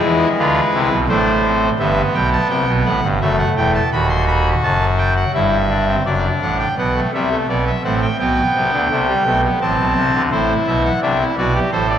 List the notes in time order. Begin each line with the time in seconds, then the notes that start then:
Already playing: G#3 E4 G#4
0.03 E2 E3
0.38 D2 D3 F4 B4
0.74 C2 C3 E4
0.91 B1 B2
1.09 A1 A2 A3 D4 C5
1.45 C4
1.79 G1 G2 B3 E5
2.14 B1 B2 G5
2.32 A5
2.50 C2 C3 G5
2.68 B1 B2
2.85 A1 A2 F#5
3.03 G1 G2
3.21 F#1 F#2 A3 E5
3.38 F#5
3.56 E1 E2 G5
3.74 A5
3.92 D#1 D#2 F#4 B5
4.09 C6
4.27 B5
4.63 F#1 F#2 A5
4.98 G5
5.16 F#5
5.34 G1 G2 E4 E5
5.69 D4
5.88 C4
6.06 F#1 F#2 D4 D5
6.42 A1 A2 F#5
6.59 G5
6.78 B1 B2 B3 F#5
6.96 A3
7.14 C2 C3 G3 E5
7.32 A3
7.49 B1 B2 B3 D5
7.66 E5
7.84 A1 A2 C4 F#5
8.02 G5
8.19 B1 B2 B3 G5
8.56 C2 C3
8.73 D2 D3
8.91 C2 C3 A3
9.08 G3
9.26 B1 B2 A3
9.44 B3
9.61 A1 A2 C4 A5
9.79 B1 B2
9.97 C2 C3
10.14 D2 D3
10.31 A1 A2 E4 C5
10.67 B1 B2 E5
10.85 F#5
11.02 C2 C3 D4 E5
11.20 E4
11.37 B1 B2 F#4 D5
11.54 G4
11.72 A1 A2 A4 C5
11.89 D5